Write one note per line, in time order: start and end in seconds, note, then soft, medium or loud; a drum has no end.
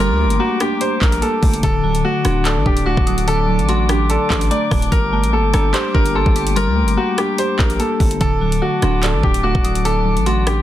0.00 0.11 G1 loud
0.00 1.65 G3 loud
0.00 0.19 A3 medium
0.00 0.39 A#3 medium
0.00 0.61 D4 medium
0.00 0.19 G4 loud
0.00 1.60 G4 medium
0.00 0.38 A#4 loud
0.00 1.60 G5 medium
0.00 0.37 C6 loud
0.00 1.60 D6 medium
0.00 downlifter medium
0.10 0.26 D2 loud
0.19 1.22 A3 medium
0.25 0.39 G1 loud
0.30 closed hi-hat medium
0.39 1.21 A#3 medium
0.39 0.59 F#4 medium
0.39 1.59 A#5 medium
0.60 1.00 D4 medium
0.60 0.80 G4 medium
0.60 cross-stick loud
0.60 closed hi-hat medium
0.81 1.63 G4 loud
0.81 1.00 C5 medium
0.81 closed hi-hat medium
1.01 1.21 A#1 loud
1.01 1.63 D4 medium
1.01 1.21 A#4 medium
1.01 kick medium
1.01 clap loud
1.12 closed hi-hat medium
1.22 1.63 A#3 medium
1.22 1.61 A4 medium
1.22 closed hi-hat medium
1.43 1.62 G1 loud
1.43 1.63 A3 medium
1.43 kick medium
1.43 open hi-hat medium
1.53 closed hi-hat medium
1.63 2.03 D1 loud
1.63 2.66 D3 loud
1.63 4.89 A4 medium
1.63 2.02 A4 loud
1.63 4.89 D5 medium
1.63 4.89 F#5 medium
1.63 8.04 D6 medium
1.63 kick loud
1.63 closed hi-hat medium
1.84 2.86 F#3 medium
1.84 2.22 A5 medium
1.95 closed hi-hat medium
2.04 2.85 A3 medium
2.04 2.23 F#4 loud
2.24 2.58 D1 loud
2.24 2.65 D4 medium
2.24 2.44 F#4 medium
2.24 2.44 C6 medium
2.24 cross-stick loud
2.24 closed hi-hat medium
2.45 2.65 A4 medium
2.45 3.48 D5 loud
2.45 clap loud
2.45 closed hi-hat medium
2.56 2.65 A1 loud
2.66 2.96 D1 loud
2.66 3.69 D4 medium
2.66 2.85 G4 medium
2.66 kick medium
2.77 closed hi-hat medium
2.86 3.67 A3 medium
2.86 3.25 F#4 medium
2.86 3.06 D6 loud
2.97 3.60 D1 loud
2.97 kick loud
3.07 3.46 F#3 medium
3.07 3.26 D#6 medium
3.07 closed hi-hat medium
3.18 closed hi-hat medium
3.27 4.30 D3 loud
3.27 3.66 A4 loud
3.27 3.66 D6 loud
3.27 closed hi-hat medium
3.48 4.51 F#3 medium
3.59 4.18 A1 loud
3.59 closed hi-hat soft
3.69 4.50 A3 medium
3.69 3.88 F#4 medium
3.69 4.47 C6 loud
3.69 closed hi-hat medium
3.89 4.29 D4 medium
3.89 4.08 G4 medium
3.89 cross-stick loud
3.89 closed hi-hat medium
4.10 4.48 A4 medium
4.10 4.92 D5 medium
4.10 closed hi-hat medium
4.30 4.50 A1 loud
4.30 4.92 D4 medium
4.30 kick loud
4.30 clap loud
4.41 closed hi-hat medium
4.51 4.92 A3 medium
4.51 4.89 D5 medium
4.51 4.70 A#5 medium
4.51 closed hi-hat medium
4.71 4.91 D1 loud
4.71 4.92 F#3 medium
4.71 4.91 A5 medium
4.71 kick medium
4.71 cross-stick loud
4.71 open hi-hat medium
4.82 closed hi-hat medium
4.91 5.25 G1 loud
4.91 5.94 G3 loud
4.91 8.04 G4 medium
4.91 5.31 A#4 loud
4.91 8.04 G5 medium
4.91 kick loud
4.91 closed hi-hat medium
5.13 6.15 A3 medium
5.13 5.51 A5 medium
5.23 5.40 A1 loud
5.23 closed hi-hat medium
5.33 6.13 A#3 medium
5.33 5.52 A4 medium
5.38 5.53 G1 loud
5.54 5.73 G1 loud
5.54 5.93 D4 medium
5.54 5.73 A4 medium
5.54 5.73 A#5 medium
5.54 cross-stick loud
5.54 closed hi-hat medium
5.74 6.77 G4 loud
5.74 5.93 C5 medium
5.74 clap loud
5.74 closed hi-hat medium
5.94 6.25 G1 loud
5.94 6.97 D4 medium
5.94 6.14 A#4 medium
5.94 kick loud
6.05 closed hi-hat medium
6.14 6.95 A#3 medium
6.14 6.54 A4 medium
6.14 6.35 C6 medium
6.26 6.69 G1 loud
6.26 kick loud
6.36 6.55 D6 medium
6.36 closed hi-hat medium
6.47 closed hi-hat medium
6.56 7.59 G3 loud
6.56 6.95 A#4 loud
6.56 6.95 C6 loud
6.56 closed hi-hat medium
6.67 6.84 D2 loud
6.77 7.80 A3 medium
6.82 6.97 G1 loud
6.88 closed hi-hat medium
6.97 7.78 A#3 medium
6.97 7.17 F#4 medium
6.97 8.17 A#5 medium
7.18 7.58 D4 medium
7.18 7.37 G4 medium
7.18 cross-stick loud
7.18 closed hi-hat medium
7.38 8.21 G4 loud
7.38 7.58 C5 medium
7.38 closed hi-hat medium
7.59 7.79 A#1 loud
7.59 8.21 D4 medium
7.59 7.79 A#4 medium
7.59 kick medium
7.59 clap loud
7.70 closed hi-hat medium
7.80 8.21 A#3 medium
7.80 8.18 A4 medium
7.80 closed hi-hat medium
8.00 8.20 G1 loud
8.00 8.21 A3 medium
8.00 kick loud
8.00 open hi-hat medium
8.11 closed hi-hat medium
8.21 8.60 D1 loud
8.21 9.24 D3 loud
8.21 10.62 A4 medium
8.21 8.60 A4 loud
8.21 10.62 D5 medium
8.21 10.62 F#5 medium
8.21 10.62 D6 medium
8.21 kick loud
8.21 closed hi-hat medium
8.41 9.44 F#3 medium
8.41 8.80 A5 medium
8.52 closed hi-hat medium
8.62 9.43 A3 medium
8.62 8.81 F#4 medium
8.82 9.15 D1 loud
8.82 9.22 D4 medium
8.82 9.02 F#4 medium
8.82 9.02 C6 medium
8.82 cross-stick loud
8.82 closed hi-hat medium
9.03 9.22 A4 medium
9.03 10.06 D5 loud
9.03 clap loud
9.03 closed hi-hat medium
9.14 9.23 A1 loud
9.23 9.54 D1 loud
9.23 10.26 D4 medium
9.23 9.43 G4 medium
9.23 kick medium
9.34 closed hi-hat medium
9.43 10.25 A3 medium
9.43 9.83 F#4 medium
9.43 9.63 D6 loud
9.55 10.18 D1 loud
9.55 kick loud
9.64 10.04 F#3 medium
9.64 9.84 D#6 medium
9.64 closed hi-hat medium
9.75 closed hi-hat medium
9.85 10.62 D3 loud
9.85 10.24 A4 loud
9.85 10.24 D6 loud
9.85 closed hi-hat medium
10.05 10.62 F#3 medium
10.16 10.62 A1 loud
10.16 closed hi-hat soft
10.26 10.62 A3 medium
10.26 10.45 F#4 medium
10.26 10.62 C6 loud
10.26 closed hi-hat medium
10.46 10.62 D4 medium
10.46 10.62 G4 medium
10.46 cross-stick loud
10.46 closed hi-hat medium